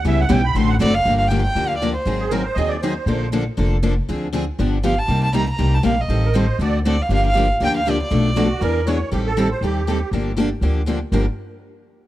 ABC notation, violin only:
X:1
M:4/4
L:1/8
Q:"Swing" 1/4=238
K:D
V:1 name="Violin"
z6 d ^e- | [K:Gm] ^e f g g2 f d c- | c3 z4 z | z8 |
z6 f a- | a a b b2 a f e- | e3 z3 d f | f f2 z g f d d- |
d6 z2 | z8 | z8 | z8 |]